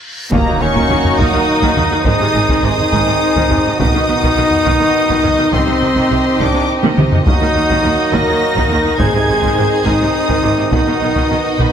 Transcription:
Already playing: reverse cymbal
0.31 D#2 D#3 F#3 A#3 D#4 F#4 A#4 A#5, taiko, impact
0.47 D#2 D#3
0.60 D#2 D#3 C#4 C#6
0.75 D#2 D#3, taiko
0.90 D#2 D#3
1.05 taiko low
1.18 D#2 D#3 D#4 D#6, taiko
1.33 D#2 D#3
1.62 D#2 D#3, taiko
1.77 D#2 D#3, taiko low
1.91 D#2 D#3
2.05 G#1 G#2 D#3 C4 D#4 G#4 C5 D#6, taiko
2.20 G#2 C3
2.35 G#1 G#2 C3
2.49 G#2 D#3, taiko
2.63 G#1 G#2 C3 D#4 D#6
2.78 taiko low
2.93 G#1 G#2 D#3, taiko
3.06 G#2 C3
3.36 G#2 D#3, taiko
3.51 G#1 G#2 C3, taiko low
3.65 G#2 C3
3.78 B1 B2 D#3 B3 D#4 F#4 D#5 D#6, taiko
3.94 B2 D#3
4.09 B1 B2 D#3
4.22 B2 D#3, taiko
4.37 B1 B2 D#3
4.52 taiko low
4.66 B1 B2 D#3, taiko
4.81 B2 D#3
5.09 B2 D#3, taiko
5.23 B1 B2 D#3, taiko low
5.38 B2 D#3
5.52 C2 C3 D#3 C4 G4 C6, taiko
5.67 C3
5.82 C2 C3
5.96 C3 D#3, taiko
6.10 C2 C3
6.39 C2 C3 D#3 D4 D6, taiko
6.54 C3
6.83 C3 D#3, taiko high
6.97 C2 C3, taiko mid
7.12 C3, taiko low
7.26 D#2 D#3 F#3 A#3 D#4 F#4 D#5 D#6, taiko
7.41 D#2 D#3
7.55 D#2 D#3
7.70 D#2 D#3, taiko
7.83 D#2 D#3
8.12 D#2 D#3 A#4 A#6, taiko
8.27 D#2 D#3
8.56 D#2 D#3, taiko
8.70 D#2 D#3
8.85 D#2 D#3
8.98 G#1 G#2 D#3 C4 G#4 C5 G#6, taiko
9.14 G#2 C3
9.28 G#1 G#2 C3
9.41 G#2 D#3, taiko
9.57 G#1 G#2 C3
9.86 G#1 G#2 D#3 D#4 D#6, taiko
10.00 G#2 C3
10.29 G#2 D#3, taiko
10.44 G#1 G#2 C3
10.58 G#2 C3
10.72 B1 B2 D#3 B3 D#4 F#4 D#5 D#6, taiko
10.87 B2 D#3
11.01 B1 B2 D#3
11.16 B2 D#3, taiko
11.30 B1 B2 D#3
11.59 B1 B2 D#3 B3 B5, taiko

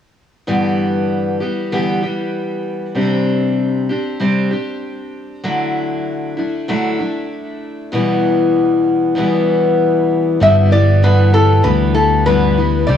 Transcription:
0.47 G2 D3 E3 G3 B3 G4
1.40 E3 G3 B3 G4
1.72 G2 D3 E3 G3 B3 G4
2.02 E3 G3 B3 G4
2.95 C3 G3 C4 D4 G4
3.89 C4 D4 G4
4.20 C3 G3 C4 D4 G4
4.51 C4 D4 G4
5.44 D3 F#3 A3 D4 E4
6.37 A3 D4 E4
6.68 D3 F#3 A3 D4 E4
6.99 A3 D4 E4
7.92 E2 B2 E3 G3 B3 E4
9.15 E2 B2 E3 G3 B3 E4
10.40 G1 G2 D3 E3 G3 B3 E4 E5
10.71 E3 G3 B3 E4 D5
11.02 G2 D3 E3 G3 B3 E4 B4
11.33 E3 G3 B3 E4 A4
11.63 D2 E3 G3 B3 E4 B4
11.95 E3 G3 B3 E4 A4
12.26 G2 D3 E3 G3 B3 E4 B4
12.57 E3 G3 B3 E4
12.87 C2 C3 G3 C4 D4 G4 D5

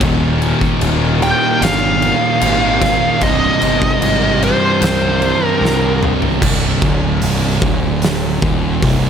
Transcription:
0.00 D#1 D#2 A#2 D#3, kick, crash
0.42 crash
0.61 kick
0.81 D#1, crash
1.21 D#2 A#2 D#3 G5, crash
1.60 G1 D#2 A#2 F5, crash
1.65 D#3, snare
2.02 crash
2.41 G#1 D#2 A#2 D#3, crash
2.82 kick, snare, crash
3.21 C1 C2 G2 C3 D#5, kick, crash
3.61 G1, crash
3.82 kick
4.01 G#1, crash
4.41 C2 G2 C3 C5, crash
4.80 C2 G2 C3, snare, crash
5.22 crash
5.47 A#4
5.61 C2 G2 C3
5.65 snare
6.03 mid tom
6.22 floor tom
6.42 C1 C2, kick, crash
6.82 D1 D2, kick
7.22 C1 C2, open hi-hat
7.62 D1 D2, kick
8.02 snare, open hi-hat
8.42 D#1 D#2, kick
8.82 C1 C2, kick, open hi-hat

